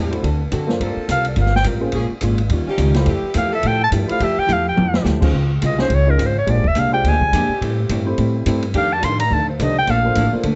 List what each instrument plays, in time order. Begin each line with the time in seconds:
Already playing: upright bass E2, hollow-body jazz guitar A2 G3 C4 E4, saxophone section G3 C4 E4 A4
0.11 upright piano A3 D4 E4 F#4 C5, ride
0.22 upright bass D2, hollow-body jazz guitar D3 C4 F#4 A4, kick, ride
0.51 upright bass F#2, hollow-body jazz guitar D3 C4 F#4 A4, kick, hi-hat pedal, ride
0.67 upright piano A#3 D4 F4 A4 C5, snare
0.80 upright bass G2, saxophone section F3 A#3 C4 A4, hollow-body jazz guitar G3 C4 F4 A#4, kick, ride
0.96 muted upright bass stroke
1.08 upright bass C2, hollow-body jazz guitar G3 C4 F4 A#4, clarinet F5, kick, hi-hat pedal, ride
1.25 clarinet D5, ride
1.36 upright bass G1, hollow-body jazz guitar G3 C4 F4 A#4, kick, ride
1.41 clarinet F5
1.46 snare
1.56 clarinet G5, snare
1.64 upright bass A1, hollow-body jazz guitar G3 C4 F4 A#4, kick, hi-hat pedal, ride
1.81 upright piano A#3 C#4 F4 G#4 C5
1.92 upright bass A#1, hollow-body jazz guitar A#2 G#3 C#4 F4, saxophone section F3 A#3 C#4 G#4, kick, ride
2.21 upright bass G#1, hollow-body jazz guitar A#2 G#3 C#4 F4, kick, hi-hat pedal, ride
2.38 ride
2.49 upright bass D#2, hollow-body jazz guitar D#3 G3 C#4 F4, kick, ride
2.67 saxophone section F3 C#4 D#4 G4, muted upright bass stroke
2.77 upright bass C#2, hollow-body jazz guitar D#3 G3 C#4 F4, kick, hi-hat pedal, ride
2.94 upright piano A3 E4 F4 G4 C5, snare, ride
3.05 upright bass F2, hollow-body jazz guitar F3 A3 E4 G4, saxophone section F3 A3 E4 G4, kick, ride
3.23 muted upright bass stroke
3.34 upright bass E2, hollow-body jazz guitar F3 A3 E4 G4, kick, hi-hat pedal, ride
3.38 clarinet F5
3.51 saxophone section F3 A3 E4 A4, clarinet E5
3.63 upright bass A2, hollow-body jazz guitar F3 A3 E4 G4, kick, ride
3.67 clarinet G5
3.84 clarinet A5
3.91 upright bass G2, hollow-body jazz guitar F3 A3 E4 G4, kick, hi-hat pedal, ride
4.08 upright piano A3 E4 F4 G4 C5, clarinet F5, muted upright bass stroke, ride
4.19 upright bass F2, saxophone section F3 A3 E4 G4, hollow-body jazz guitar F3 A3 E4 G4, kick, ride
4.23 clarinet E5
4.38 clarinet G5, muted upright bass stroke
4.47 upright bass E2, hollow-body jazz guitar F3 A3 E4 G4, hi-hat pedal, mid tom
4.53 clarinet F5
4.69 clarinet G5
4.76 upright bass F2, hollow-body jazz guitar F3 A3 E4 G4, mid tom
4.94 snare
5.02 upright bass D2, hollow-body jazz guitar F3 A3 E4 G4, snare, hi-hat pedal
5.21 upright piano C#4 D#4 F4 G#4 C5, kick, crash
5.32 upright bass C#2, hollow-body jazz guitar C#3 G#3 C4 F4, kick
5.61 upright bass C2, hollow-body jazz guitar C#3 G#3 C4 F4, kick, hi-hat pedal, ride
5.66 clarinet D#5
5.78 saxophone section F3 C4 C#4 G#4, upright piano C#4 D#4 F4 G#4 C5, clarinet C5, snare
5.90 upright bass C#2, hollow-body jazz guitar C#3 G#3 C4 F4, kick, ride
5.95 clarinet C#5
6.06 upright piano C#4 D#4 F4 G#4 D#5, clarinet A#4
6.18 upright bass G#1, hollow-body jazz guitar C#3 G#3 C4 F4, kick, hi-hat pedal, ride
6.26 clarinet C5
6.38 clarinet C#5
6.46 upright bass A#1, hollow-body jazz guitar A#2 G#3 D4 G4, upright piano G#3 D4 F4 G4 C5, kick, ride
6.51 clarinet D5
6.57 upright bass G#1
6.64 upright bass F1, clarinet E5, kick
6.75 upright bass C2, hollow-body jazz guitar A#2 G#3 D4 G4, kick, hi-hat pedal, ride
6.79 clarinet F5
6.92 upright piano G#3 D4 F4 G4 C5, clarinet G5
7.04 upright bass D2, hollow-body jazz guitar A#2 G#3 D4 G4, saxophone section D3 G#3 C4 G4, kick, ride
7.09 clarinet G#5
7.21 kick
7.33 upright bass F2, hollow-body jazz guitar A#2 G#3 D4 G4, saxophone section D3 G#3 C4 G4, kick, hi-hat pedal, ride
7.48 muted upright bass stroke
7.60 hollow-body jazz guitar A2 G3 C4 E4, upright bass A2, saxophone section E3 A3 C4 G4, kick, ride
7.89 upright bass G2, hollow-body jazz guitar A2 G3 C4 E4, kick, hi-hat pedal, ride
8.06 upright piano A3 C4 E4 G4 C5
8.18 hollow-body jazz guitar A2 G3 C4 E4, upright bass A2, kick, ride
8.45 upright bass G2, hollow-body jazz guitar A2 G3 C4 E4, upright piano A3 C4 E4 G4 C5, kick, hi-hat pedal, ride
8.62 ride
8.73 hollow-body jazz guitar F2 D#3 A3 D4, upright bass F2, saxophone section D#3 A3 D4 G4, kick, ride
8.77 clarinet F5
8.93 clarinet A5
9.03 hollow-body jazz guitar F2 D#3 A3 D4, upright bass A2, clarinet C6, kick, hi-hat pedal, ride
9.20 clarinet A#5, ride
9.30 upright bass D2, hollow-body jazz guitar F2 D#3 A3 D4, clarinet A5, kick
9.49 clarinet C5
9.59 upright bass C2, hollow-body jazz guitar F2 D#3 A3 D4, upright piano A3 D4 D#4 G4 C5, clarinet D#5, kick, hi-hat pedal, ride
9.79 clarinet G5
9.87 upright bass A#1, hollow-body jazz guitar A#2 F3 A3 D4, saxophone section F3 A#3 D4 A4, clarinet F5, kick, ride
10.05 upright piano A#3 D4 F4 A4 C5
10.14 upright bass A1, hollow-body jazz guitar A#2 F3 A3 D4, saxophone section F3 A#3 D4 E4, kick, hi-hat pedal, ride
10.33 upright piano A#3 D4 F4 A4 C5, muted upright bass stroke
10.42 upright bass D2, hollow-body jazz guitar A#2 F3 A3 D4, kick, ride